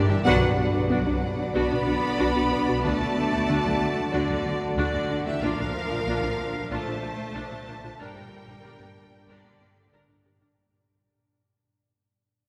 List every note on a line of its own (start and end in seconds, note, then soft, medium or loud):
0.00 0.26 G2 medium
0.00 0.25 D3 medium
0.00 0.21 D4 medium
0.00 0.25 G4 medium
0.00 0.21 D5 medium
0.09 0.25 E3 medium
0.09 0.16 D4 medium
0.09 0.25 G4 medium
0.09 0.19 G4 medium
0.09 0.16 G4 medium
0.09 0.25 E5 medium
0.25 0.41 B1 medium
0.25 5.37 D3 medium
0.25 1.51 F#3 medium
0.25 0.35 B3 loud
0.25 2.79 B3 loud
0.25 5.37 D4 loud
0.25 0.40 D4 medium
0.25 5.37 F#4 loud
0.25 0.41 F#4 loud
0.25 1.50 B4 medium
0.25 5.37 D5 loud
0.25 1.50 F#5 loud
0.42 0.49 B1 medium
0.42 0.48 D4 medium
0.42 0.48 F#4 medium
0.42 0.51 B4 medium
0.74 0.81 B1 medium
0.74 0.80 D4 medium
0.74 0.83 F#4 medium
0.74 0.81 F#4 medium
0.90 0.97 B1 medium
0.90 1.00 B3 loud
0.90 1.05 D4 medium
0.90 1.05 F#4 medium
1.06 1.13 B1 medium
1.06 1.12 D4 medium
1.06 1.16 D4 medium
1.06 1.12 F#4 medium
1.54 1.62 B1 medium
1.54 1.65 B3 loud
1.54 2.84 B3 medium
1.54 1.69 D4 medium
1.54 1.69 F#4 loud
1.54 2.83 D5 medium
1.54 2.81 B5 loud
1.70 1.78 B1 medium
1.70 1.77 D4 medium
1.70 1.81 D4 medium
1.70 1.77 F#4 medium
1.86 1.94 B1 medium
1.86 1.92 D4 medium
1.86 1.97 D4 medium
1.86 1.93 F#4 medium
2.19 2.27 B1 medium
2.19 2.29 B3 loud
2.19 2.34 D4 medium
2.19 2.34 F#4 medium
2.35 2.42 B1 medium
2.35 2.41 D4 medium
2.35 2.41 F#4 medium
2.35 2.46 F#4 medium
2.51 2.59 B1 medium
2.51 2.57 D4 medium
2.51 2.57 F#4 medium
2.51 2.62 B4 medium
2.67 2.75 B1 medium
2.67 2.73 D4 medium
2.67 2.74 F#4 medium
2.67 2.78 F#4 medium
2.83 2.91 D2 medium
2.83 2.94 D3 loud
2.83 4.12 A3 loud
2.83 5.38 A3 medium
2.83 5.42 A3 medium
2.83 2.98 D4 medium
2.83 2.98 F#4 medium
2.83 4.10 D5 loud
2.83 4.12 A5 loud
2.99 3.07 D2 medium
2.99 3.06 D4 medium
2.99 3.11 D4 medium
2.99 3.05 F#4 medium
3.32 3.39 D2 medium
3.32 3.42 A3 medium
3.32 3.38 D4 medium
3.32 3.38 F#4 medium
3.48 3.55 D2 medium
3.48 3.59 D3 loud
3.48 3.63 D4 loud
3.48 3.63 F#4 medium
3.65 3.71 D2 medium
3.65 3.75 F#3 medium
3.65 3.71 D4 medium
3.65 3.71 F#4 medium
4.12 4.19 D2 loud
4.12 4.76 D3 medium
4.12 4.23 D3 loud
4.12 4.27 D4 medium
4.12 4.76 F#4 medium
4.12 4.27 F#4 medium
4.12 4.76 D5 loud
4.28 4.35 D2 medium
4.28 4.39 F#3 medium
4.28 4.35 D4 medium
4.28 4.35 F#4 medium
4.45 4.52 D2 medium
4.45 4.55 F#3 medium
4.45 4.52 D4 medium
4.45 4.52 F#4 medium
4.77 4.84 D2 medium
4.77 5.24 D3 medium
4.77 4.87 D3 loud
4.77 4.92 D4 loud
4.77 5.24 F#4 medium
4.77 4.92 F#4 loud
4.77 5.24 D5 loud
4.94 5.00 D2 medium
4.94 5.03 A3 medium
4.94 5.00 D4 medium
4.94 5.00 F#4 medium
5.10 5.16 D2 medium
5.10 5.20 D4 medium
5.10 5.17 D4 medium
5.10 5.17 F#4 medium
5.26 5.33 D2 medium
5.26 5.42 E3 medium
5.26 5.36 A3 medium
5.26 5.33 D4 medium
5.26 5.33 F#4 medium
5.26 5.42 G4 loud
5.26 5.42 E5 loud
5.41 5.48 A#1 loud
5.41 10.22 A#2 loud
5.41 10.58 A#2 loud
5.41 10.22 D3 loud
5.41 6.68 F3 loud
5.41 5.52 A#3 loud
5.41 7.82 D4 loud
5.41 7.98 D4 medium
5.41 5.57 D4 loud
5.41 7.82 F4 loud
5.41 8.00 F4 loud
5.41 5.57 F4 loud
5.41 6.71 A#4 loud
5.41 10.54 D5 medium
5.41 6.71 F5 loud
5.58 5.65 A#1 medium
5.58 5.65 D4 medium
5.58 5.65 F4 medium
5.58 5.69 A#4 medium
5.90 5.96 A#1 medium
5.90 5.96 D4 medium
5.90 5.97 F4 medium
5.90 6.01 F4 medium
6.06 6.12 A#1 loud
6.06 6.17 A#3 loud
6.06 6.21 D4 loud
6.06 6.21 F4 loud
6.22 6.29 A#1 medium
6.22 6.29 D4 medium
6.22 6.33 D4 medium
6.22 6.29 F4 medium
6.70 6.78 A#1 loud
6.70 7.97 A3 loud
6.70 6.81 A#3 loud
6.70 6.85 D4 medium
6.70 6.85 F4 loud
6.70 7.97 C5 loud
6.70 7.97 A5 loud
6.86 6.93 A#1 medium
6.86 6.93 D4 medium
6.86 6.97 D4 medium
6.86 6.93 F4 medium
7.02 7.09 A#1 medium
7.02 7.09 D4 medium
7.02 7.13 D4 medium
7.02 7.09 F4 medium
7.34 7.41 A#1 loud
7.34 7.45 A#3 loud
7.34 7.49 D4 loud
7.34 7.49 F4 loud
7.51 7.58 A#1 medium
7.51 7.58 D4 loud
7.51 7.57 F4 medium
7.51 7.62 F4 medium
7.67 7.74 A#1 loud
7.67 7.74 D4 loud
7.67 7.73 F4 loud
7.67 7.78 A#4 medium
7.83 7.89 A#1 medium
7.83 7.90 D4 loud
7.83 7.89 F4 loud
7.83 7.94 F4 medium
7.99 8.05 G1 loud
7.99 9.26 G3 loud
7.99 8.10 G3 loud
7.99 10.57 D4 loud
7.99 8.14 D4 loud
7.99 10.21 D4 loud
7.99 8.14 A#4 loud
7.99 9.29 A#4 loud
7.99 9.29 G5 loud
8.16 8.22 G1 medium
8.16 8.22 D4 medium
8.16 8.27 G4 medium
8.16 8.22 A#4 medium
8.48 8.54 G1 medium
8.48 8.55 D4 medium
8.48 8.59 D4 medium
8.48 8.55 A#4 medium
8.63 8.69 G1 loud
8.63 8.75 G3 loud
8.63 8.79 D4 loud
8.63 8.79 A#4 loud
8.79 8.86 G1 medium
8.79 8.91 A#3 medium
8.79 8.87 D4 medium
8.79 8.87 A#4 medium
9.28 9.34 G1 loud
9.28 9.92 D3 loud
9.28 9.39 G3 loud
9.28 9.44 D4 loud
9.28 9.93 G4 medium
9.28 9.44 A#4 loud
9.28 9.93 D5 loud
9.44 9.50 G1 medium
9.44 9.55 A#3 medium
9.44 9.51 D4 medium
9.44 9.51 A#4 medium
9.60 9.66 G1 medium
9.60 9.71 A#3 medium
9.60 9.67 D4 medium
9.60 9.67 A#4 medium
9.92 9.99 G1 loud
9.92 10.04 G3 loud
9.92 10.08 D4 medium
9.92 10.08 A#4 loud
10.08 10.15 G1 medium
10.08 10.16 D4 medium
10.08 10.19 D4 medium
10.08 10.15 A#4 medium
10.24 10.31 G1 medium
10.24 10.31 D4 medium
10.24 10.35 G4 medium
10.24 10.31 A#4 medium
10.41 10.47 G1 medium
10.41 10.47 D4 medium
10.41 10.51 D4 medium
10.41 10.47 A#4 medium